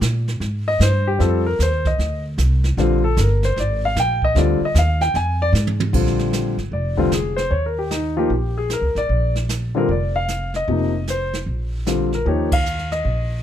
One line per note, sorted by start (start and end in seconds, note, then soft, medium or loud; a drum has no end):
0.01 0.40 A#2 medium
0.01 kick soft
0.01 snare medium
0.01 hi-hat pedal soft
0.28 snare soft
0.40 0.79 G#2 medium
0.40 brush sweep medium
0.40 kick soft
0.40 snare soft
0.68 0.81 D#5 loud
0.80 1.18 G2 medium
0.80 1.07 C5 medium
0.80 kick soft
0.80 snare medium
0.80 hi-hat pedal soft
1.07 1.20 G4 medium
1.19 1.58 F2 medium
1.19 1.43 G3 medium
1.19 1.43 C4 medium
1.19 1.43 F4 medium
1.19 1.43 A4 medium
1.19 brush sweep soft
1.19 kick soft
1.19 snare soft
1.46 1.59 A#4 medium
1.59 1.98 D#2 medium
1.59 1.86 C5 medium
1.59 kick soft
1.59 snare medium
1.59 hi-hat pedal medium
1.85 2.23 D#5 medium
1.85 kick medium
1.85 snare soft
1.98 2.37 D2 medium
1.98 brush sweep medium
1.98 snare soft
2.38 2.76 C2 medium
2.38 kick soft
2.38 snare medium
2.38 hi-hat pedal medium
2.64 snare soft
2.77 3.16 A#1 medium
2.77 3.01 D3 medium
2.77 3.02 G3 medium
2.77 3.02 C4 medium
2.77 3.02 F4 medium
2.77 brush sweep soft
2.77 kick soft
2.77 snare soft
3.04 3.17 A4 medium
3.17 3.55 G1 medium
3.17 3.44 A#4 medium
3.17 kick soft
3.17 snare medium
3.17 hi-hat pedal medium
3.43 3.57 C5 medium
3.43 snare soft
3.56 3.95 G#1 medium
3.56 3.83 D5 medium
3.56 brush sweep medium
3.56 kick soft
3.56 snare soft
3.85 3.97 F5 medium
3.96 4.35 A#1 medium
3.96 4.23 G5 loud
3.96 kick soft
3.96 snare medium
3.96 hi-hat pedal medium
4.22 4.37 D#5 medium
4.22 kick medium
4.35 4.59 D2 medium
4.35 4.59 D3 medium
4.35 4.59 G3 medium
4.35 4.59 C4 medium
4.35 4.60 F4 medium
4.35 4.62 D5 medium
4.35 brush sweep soft
4.35 kick soft
4.35 snare soft
4.60 muted upright bass stroke soft
4.65 4.77 D#5 medium
4.75 5.13 D#2 medium
4.75 5.02 F5 medium
4.75 kick soft
4.75 snare medium
4.75 hi-hat pedal medium
5.01 5.15 G5 medium
5.01 snare soft
5.14 5.52 F2 medium
5.14 5.40 G#5 medium
5.14 brush sweep medium
5.14 kick soft
5.14 snare soft
5.42 5.50 D5 loud
5.53 5.92 G#2 loud
5.53 snare soft
5.53 hi-hat pedal soft
5.67 high tom medium
5.80 high tom medium
5.93 6.54 A#1 medium
5.93 6.53 D3 medium
5.93 6.54 G3 soft
5.93 6.54 C4 medium
5.93 6.54 F4 medium
5.93 brush sweep soft
5.93 kick medium
5.93 crash medium
6.07 snare soft
6.19 snare soft
6.33 snare medium
6.33 hi-hat pedal soft
6.57 6.71 G#1 medium
6.57 snare soft
6.72 7.47 F1 medium
6.72 6.98 D5 medium
6.72 brush sweep soft
6.72 kick soft
6.97 7.10 D3 medium
6.97 7.10 G3 medium
6.97 7.11 C4 medium
6.97 7.11 F4 medium
6.97 kick soft
7.12 7.38 G#4 medium
7.12 snare medium
7.12 hi-hat pedal medium
7.37 7.50 C5 medium
7.37 snare soft
7.51 8.26 D#2 medium
7.51 7.64 C#5 medium
7.51 brush sweep soft
7.51 kick soft
7.66 7.78 A#4 medium
7.79 7.91 G4 medium
7.91 8.16 D#4 medium
7.91 snare medium
7.91 hi-hat pedal soft
8.17 8.29 F3 medium
8.17 8.29 A#3 medium
8.17 8.29 D#4 medium
8.17 8.30 F4 medium
8.17 8.30 G4 medium
8.30 8.79 A#1 medium
8.30 brush sweep soft
8.30 kick soft
8.58 8.70 G#4 medium
8.70 8.96 A#4 medium
8.70 snare medium
8.70 hi-hat pedal soft
8.81 8.94 C#2 medium
8.95 9.08 A1 medium
8.95 9.33 D5 medium
8.95 snare soft
9.09 9.84 A#1 medium
9.09 brush sweep soft
9.09 kick soft
9.36 snare soft
9.49 snare medium
9.49 hi-hat pedal medium
9.75 9.87 D3 medium
9.75 9.88 G3 medium
9.75 9.88 C4 medium
9.75 9.88 F4 medium
9.75 9.90 A#4 medium
9.89 10.64 F1 medium
9.89 10.15 D5 medium
9.89 brush sweep soft
9.89 kick soft
10.16 10.52 F5 medium
10.28 snare soft
10.28 hi-hat pedal medium
10.54 11.05 D#5 medium
10.54 snare soft
10.68 11.43 F1 medium
10.68 10.91 C3 soft
10.68 10.91 F3 soft
10.68 10.92 A#3 soft
10.68 10.92 D#4 medium
10.68 brush sweep soft
10.68 kick soft
11.08 11.34 C5 medium
11.08 snare soft
11.08 hi-hat pedal soft
11.33 snare soft
11.46 12.22 A#1 medium
11.46 brush sweep soft
11.46 kick soft
11.86 12.09 D3 soft
11.86 12.10 G3 soft
11.86 12.10 C4 soft
11.86 12.10 F4 medium
11.86 snare medium
11.86 hi-hat pedal medium
12.13 12.27 A#4 medium
12.13 snare soft
12.25 13.01 D#2 medium
12.25 12.49 F3 medium
12.25 12.49 A#3 soft
12.25 12.49 D#4 medium
12.25 12.50 G4 medium
12.25 12.52 C#5 medium
12.25 brush sweep soft
12.25 kick soft
12.52 12.89 F5 medium
12.52 kick medium
12.52 ride medium
12.66 hi-hat pedal soft
12.79 snare soft
12.92 13.41 D#5 medium
12.92 snare soft
13.05 13.43 A#1 medium
13.05 brush sweep soft
13.05 kick soft